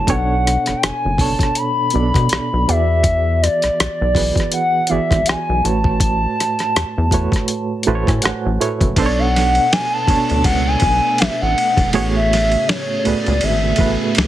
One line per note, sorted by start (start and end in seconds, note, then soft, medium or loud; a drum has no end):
0.00 0.11 A5 loud
0.07 0.57 B1 loud
0.07 1.00 B2 medium
0.07 1.01 B3 medium
0.07 1.01 D4 medium
0.07 1.01 A4 medium
0.07 1.01 C#5 medium
0.07 0.78 F#5 medium
0.07 kick loud
0.07 closed hi-hat medium
0.47 cross-stick soft
0.47 closed hi-hat medium
0.66 0.74 F#1 soft
0.66 cross-stick soft
0.66 closed hi-hat soft
0.77 0.84 G5 medium
0.83 0.92 F#1 soft
0.83 1.21 G#5 loud
0.83 cross-stick loud
0.83 closed hi-hat medium
1.05 1.36 F#1 medium
1.18 1.81 B2 medium
1.18 1.81 B3 medium
1.18 1.82 D4 medium
1.18 1.82 A4 medium
1.18 1.82 C#5 medium
1.18 1.59 A5 loud
1.18 kick medium
1.18 open hi-hat soft
1.39 kick medium
1.39 cross-stick soft
1.39 closed hi-hat soft
1.55 2.70 B5 loud
1.55 closed hi-hat medium
1.90 2.55 B2 medium
1.90 2.56 B3 medium
1.90 2.56 D4 medium
1.90 closed hi-hat medium
1.95 2.12 B1 medium
1.95 2.56 A4 medium
1.95 2.56 D5 medium
2.14 2.28 B2 medium
2.14 kick medium
2.14 cross-stick soft
2.14 closed hi-hat soft
2.29 2.40 B1 soft
2.29 cross-stick loud
2.29 closed hi-hat medium
2.53 2.66 B1 medium
2.67 3.48 E2 loud
2.67 3.89 E3 medium
2.67 3.89 B3 medium
2.67 3.89 F#4 medium
2.67 3.89 G#4 medium
2.67 3.90 D5 medium
2.67 3.44 E5 loud
2.67 closed hi-hat medium
3.04 kick loud
3.04 closed hi-hat medium
3.42 4.53 D5 loud
3.42 cross-stick soft
3.42 closed hi-hat medium
3.62 3.70 B1 soft
3.62 cross-stick soft
3.62 closed hi-hat soft
3.80 3.88 B1 soft
3.80 cross-stick loud
3.80 closed hi-hat medium
4.01 4.32 B1 medium
4.15 4.77 E3 medium
4.15 4.78 B3 medium
4.15 4.78 F#4 medium
4.15 4.78 G#4 medium
4.15 4.78 B4 medium
4.15 kick medium
4.15 open hi-hat soft
4.36 kick medium
4.36 closed hi-hat soft
4.40 cross-stick soft
4.52 4.91 F#5 medium
4.52 closed hi-hat medium
4.87 5.52 E3 medium
4.87 5.52 B3 medium
4.87 5.52 F#4 medium
4.87 5.29 E5 medium
4.87 closed hi-hat medium
4.91 4.99 G#1 soft
4.91 5.52 G#4 medium
4.91 5.52 D5 medium
5.11 5.24 G#1 loud
5.11 kick medium
5.11 cross-stick soft
5.11 closed hi-hat soft
5.26 5.36 B1 soft
5.26 5.65 G#5 loud
5.26 cross-stick loud
5.26 closed hi-hat medium
5.49 5.62 B1 medium
5.63 6.27 A1 loud
5.63 6.85 A2 medium
5.63 6.85 A3 medium
5.63 6.85 F#4 medium
5.63 6.86 B4 medium
5.63 6.86 C#5 medium
5.63 8.22 A5 loud
5.63 closed hi-hat medium
5.84 kick medium
6.00 kick loud
6.00 closed hi-hat medium
6.40 cross-stick soft
6.40 closed hi-hat medium
6.59 cross-stick soft
6.59 closed hi-hat soft
6.76 6.84 E2 soft
6.76 cross-stick loud
6.76 closed hi-hat medium
6.98 7.28 E2 medium
7.11 7.74 A2 medium
7.11 7.74 A3 medium
7.11 7.74 F#4 medium
7.11 7.75 B4 medium
7.11 7.75 C#5 medium
7.11 kick medium
7.11 closed hi-hat medium
7.32 kick loud
7.32 closed hi-hat soft
7.36 cross-stick soft
7.48 closed hi-hat medium
7.83 8.48 A2 medium
7.83 8.48 A3 medium
7.83 closed hi-hat medium
7.87 8.04 A1 medium
7.87 8.49 F#4 medium
7.87 8.49 B4 medium
7.87 7.94 C5 medium
7.87 8.06 A5 medium
7.95 8.53 C#5 loud
8.07 8.21 A2 loud
8.07 8.22 G#5 medium
8.07 kick medium
8.07 cross-stick soft
8.07 closed hi-hat soft
8.22 8.33 A1 soft
8.22 8.57 F#5 medium
8.22 cross-stick loud
8.22 closed hi-hat medium
8.46 8.58 A1 medium
8.60 8.91 A2 medium
8.60 8.91 A3 medium
8.60 8.91 F#4 medium
8.60 8.92 B4 medium
8.60 8.92 C#5 medium
8.60 8.95 E5 medium
8.60 closed hi-hat medium
8.81 8.95 F#1 medium
8.81 kick medium
8.81 closed hi-hat soft
8.96 9.59 B1 loud
8.96 9.90 B2 medium
8.96 11.90 A3 medium
8.96 11.90 B3 medium
8.96 9.90 B3 medium
8.96 11.89 D4 medium
8.96 9.90 D4 medium
8.96 9.90 A4 medium
8.96 9.05 C5 medium
8.96 9.20 D5 loud
8.96 kick loud
8.96 ride medium
9.06 9.94 C#5 loud
9.19 9.74 F#5 loud
9.36 snare soft
9.36 ride medium
9.55 ride soft
9.72 9.94 G#5 loud
9.72 finger snap medium
9.72 snare loud
9.72 ride medium
9.93 10.44 A5 loud
10.07 10.17 D2 soft
10.07 11.30 B2 medium
10.07 11.30 B3 medium
10.07 11.30 D4 medium
10.07 11.30 A4 medium
10.07 11.31 C#5 medium
10.07 kick medium
10.07 ride medium
10.30 10.43 D2 medium
10.30 ride soft
10.44 10.76 C#2 loud
10.44 10.69 F#5 loud
10.44 kick medium
10.44 ride medium
10.68 11.21 G#5 loud
10.80 11.00 B1 medium
10.80 kick loud
10.80 ride medium
11.18 11.29 A1 soft
11.18 11.41 E5 loud
11.18 finger snap loud
11.18 snare loud
11.18 ride medium
11.42 11.55 A1 medium
11.42 11.90 F#5 loud
11.58 ride medium
11.77 11.96 E1 medium
11.77 kick medium
11.77 ride soft
11.93 12.56 A1 loud
11.93 12.86 A2 medium
11.93 14.27 C#3 medium
11.93 14.27 A3 loud
11.93 12.86 A3 medium
11.93 12.86 B3 medium
11.93 12.86 F#4 medium
11.93 14.27 G#4 medium
11.93 12.86 G#4 loud
11.93 12.87 C#5 loud
11.93 12.04 F#5 medium
11.93 ride medium
12.16 12.69 E5 loud
12.33 snare soft
12.33 ride medium
12.52 ride soft
12.68 12.99 C#5 medium
12.68 finger snap loud
12.68 snare loud
12.68 ride medium
12.99 13.07 C#5 medium
13.04 13.14 C#2 medium
13.04 13.66 A2 medium
13.04 13.67 A3 medium
13.04 13.67 B3 medium
13.04 13.67 F#4 medium
13.04 13.67 G#4 medium
13.04 13.67 B4 medium
13.04 13.45 D5 medium
13.04 ride medium
13.26 13.40 C#2 loud
13.26 ride soft
13.41 13.73 G#1 medium
13.41 14.16 E5 medium
13.41 ride medium
13.76 13.97 A1 loud
13.76 14.27 A2 medium
13.76 14.27 A3 medium
13.76 14.27 B3 medium
13.76 14.27 F#4 medium
13.76 14.27 G#4 medium
13.76 kick loud
13.76 ride medium
13.80 14.27 B4 medium
14.15 14.27 C#2 loud
14.15 finger snap loud
14.15 snare loud
14.15 ride medium